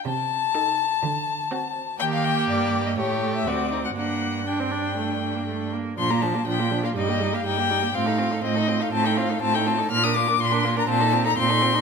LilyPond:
<<
  \new Staff \with { instrumentName = "Violin" } { \time 4/4 \key g \minor \tempo 4 = 122 a''1 | g''16 f''16 g''8 d''8. ees''16 cis''8. e''16 d''8. fis''16 | fis''4 g''2~ g''8 r8 | \key bes \major c'''16 bes''16 a''8 g''8. f''16 ees''8. f''16 g''4 |
f''4 ees''8. f''16 a''16 g''16 f''8 a''16 g''16 a''8 | f'''16 ees'''16 d'''8 c'''8. bes''16 a''8. bes''16 c'''4 | }
  \new Staff \with { instrumentName = "Violin" } { \time 4/4 \key g \minor r4 a'8. r4 r16 fis'8. r16 | g'2 g'4 fis'8 ees'8 | d'4 d'2~ d'8 r8 | \key bes \major d'16 f'16 d'16 f'16 d'16 f'16 d'16 f'16 ees'16 g'16 ees'16 g'16 ees'16 g'16 ees'16 g'16 |
f'16 a'16 f'16 a'16 f'16 a'16 f'16 a'16 f'16 a'16 f'16 a'16 f'16 a'16 f'16 a'16 | f'16 bes'16 f'16 bes'16 f'16 bes'16 f'16 bes'16 f'16 a'16 f'16 a'16 f'16 a'16 f'16 a'16 | }
  \new Staff \with { instrumentName = "Viola" } { \time 4/4 \key g \minor r4 ees'8. r4 r16 c'8. r16 | bes2 a4 c'4 | bes4 d'16 c'16 d'8 a8. bes16 a8 bes8 | \key bes \major f16 bes16 f16 bes16 f16 bes16 f16 bes16 g16 bes16 g16 bes16 g16 bes16 g16 bes16 |
c'16 ees'16 c'16 ees'16 c'16 ees'16 c'16 ees'16 c'16 ees'16 c'16 ees'16 c'16 ees'16 c'16 ees'16 | bes16 d'16 bes16 d'16 bes16 d'16 bes16 d'16 c'16 ees'16 c'16 ees'16 c'16 ees'16 c'16 ees'16 | }
  \new Staff \with { instrumentName = "Cello" } { \clef bass \time 4/4 \key g \minor c4 r4 d4 r4 | ees4 g,4 a,4 d,4 | g,2.~ g,8 r8 | \key bes \major bes,4 bes,4 g,4 g,4 |
a,4 a,4 a,4 a,4 | bes,4 bes,4 bes,4 bes,4 | }
>>